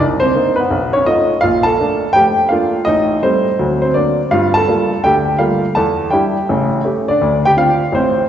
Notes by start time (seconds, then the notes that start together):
0.00 C2
0.20 C4 C5
0.35 A#3 C4 D4 D#4
0.56 B3 B4
0.70 B1
0.93 C#4 C#5
1.06 A3 B3 D#4 F4 D#5
1.41 A#1 F4 F5
1.63 A4 A5
1.80 A3 A#3 D4
2.13 F1 G4 G5
2.49 A3 A#3 D4 F4 F5
2.85 A1 D#4 D#5
3.23 G3 A3 C4 C5
3.59 D2 F#3
3.82 C4 C5
3.94 F#3 A#3 C4 D4 D5
4.31 G2 G3 F4 F5
4.54 A4 A5
4.69 G3 A3 A#3 F4
5.03 D2 D3 G4 G5
5.39 G3 A3 A#3 F4 F5
5.75 E2 A4 A5
6.11 G3 D4 E4 G4 G5
6.49 A1 C#3
6.85 A3 C#4 G4
7.08 D4 D5
7.21 D2
7.45 G4 G5
7.57 C4 D4 F4 F5
7.92 A1 C4 C5